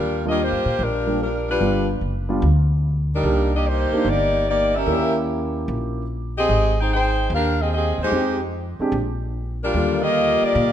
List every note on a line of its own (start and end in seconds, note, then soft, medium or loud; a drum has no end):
0.00 0.48 D#2 medium
0.00 0.25 G3 medium
0.00 0.25 D4 medium
0.00 0.25 F4 medium
0.00 0.25 A#4 medium
0.26 0.38 G3 medium
0.26 0.38 A#3 soft
0.26 0.40 A#3 medium
0.26 0.38 D4 soft
0.26 0.38 F4 medium
0.26 0.40 F4 medium
0.26 0.40 G4 medium
0.26 0.40 D#5 medium
0.42 0.82 A#3 medium
0.42 0.81 F4 medium
0.42 0.81 G4 medium
0.42 0.82 C5 medium
0.52 0.65 G2 medium
0.65 0.78 A#2 medium
0.79 1.57 A#1 medium
0.79 1.21 F4 medium
0.79 1.21 A#4 medium
0.83 1.21 G3 medium
0.83 1.22 D4 medium
1.07 1.19 G3 soft
1.07 1.19 A#3 soft
1.07 1.19 D4 soft
1.07 1.19 G4 medium
1.22 1.47 G3 medium
1.22 1.47 D4 medium
1.22 1.47 F4 medium
1.22 1.47 A#4 medium
1.50 1.87 G3 medium
1.50 1.87 D4 medium
1.50 1.87 F4 medium
1.50 1.87 B4 medium
1.61 1.99 G1 medium
1.61 1.86 G3 soft
1.61 1.86 B3 soft
1.61 1.86 D4 soft
1.61 1.86 F4 medium
2.01 2.39 F#1 medium
2.29 2.41 G3 medium
2.29 2.41 B3 medium
2.29 2.41 D4 medium
2.29 2.42 F4 medium
2.42 3.20 D2 medium
3.14 3.51 G3 medium
3.14 3.51 D4 medium
3.14 3.51 D#4 medium
3.14 3.50 A#4 medium
3.23 3.88 C2 medium
3.23 3.49 A#3 medium
3.23 3.49 D4 medium
3.23 3.49 D#4 medium
3.23 3.50 G4 medium
3.55 3.66 A#3 medium
3.55 3.66 D4 medium
3.55 3.66 G4 medium
3.55 3.66 D#5 medium
3.68 4.07 A#3 medium
3.68 4.07 D#4 medium
3.68 4.07 G4 medium
3.68 4.07 C5 medium
3.92 4.04 A#3 medium
3.92 4.05 D4 medium
3.92 4.05 D#4 medium
3.92 4.05 G4 medium
3.92 muted upright bass stroke soft
4.05 4.82 G1 medium
4.05 4.48 A#3 medium
4.05 4.47 D#4 medium
4.05 4.48 G4 medium
4.05 4.48 D5 medium
4.49 4.73 A#3 medium
4.49 4.74 D#4 medium
4.49 4.73 G4 medium
4.49 4.73 D5 medium
4.75 5.15 C#4 medium
4.75 5.15 G4 medium
4.75 5.15 A#4 medium
4.75 5.15 E5 loud
4.86 5.64 D#2 medium
4.86 6.01 A#3 medium
4.86 6.01 C#4 soft
4.86 6.01 E4 medium
4.86 6.02 G4 medium
5.68 6.45 A#1 medium
6.38 6.75 C4 medium
6.38 6.75 G4 medium
6.38 6.75 G#4 medium
6.38 6.75 D#5 medium
6.49 7.26 G#1 medium
6.80 6.92 D#4 medium
6.80 6.92 G#4 medium
6.80 6.92 C5 medium
6.80 6.92 G5 medium
6.94 7.30 D#4 medium
6.94 7.30 G#4 medium
6.94 7.30 C5 medium
6.94 7.30 G5 medium
7.30 7.94 D#2 medium
7.30 7.58 D4 medium
7.34 7.58 G4 medium
7.34 7.58 A#4 medium
7.34 7.58 F5 medium
7.61 7.73 C4 medium
7.61 7.72 G4 medium
7.61 7.73 G#4 medium
7.61 7.73 D#5 medium
7.74 7.98 C4 medium
7.74 7.98 G4 medium
7.74 7.98 G#4 medium
7.74 7.98 D#5 medium
7.98 8.11 D#2 medium
8.02 8.39 G#3 medium
8.02 8.39 D#4 medium
8.02 8.39 G4 medium
8.02 8.39 C5 medium
8.11 8.76 F2 medium
8.11 8.37 G#3 medium
8.11 8.37 C4 medium
8.11 8.37 D#4 medium
8.11 8.37 G4 medium
8.79 8.92 G#3 medium
8.79 8.92 C4 medium
8.79 8.92 D4 medium
8.79 8.93 G4 medium
8.79 muted upright bass stroke soft
8.92 9.70 A#1 medium
9.63 10.00 G3 medium
9.63 10.00 D4 medium
9.63 10.00 F4 medium
9.63 10.00 A#4 medium
9.74 10.38 D#2 medium
9.74 10.72 D3 medium
9.74 10.72 G3 medium
9.74 10.72 A#3 soft
9.74 10.72 F4 medium
10.03 10.41 A#3 medium
10.03 10.41 F4 medium
10.03 10.42 G4 medium
10.03 10.43 D#5 loud
10.42 10.72 A#3 medium
10.42 10.72 F4 medium
10.42 10.72 G4 medium
10.42 10.72 D5 loud
10.42 muted upright bass stroke soft
10.55 10.72 A#2 medium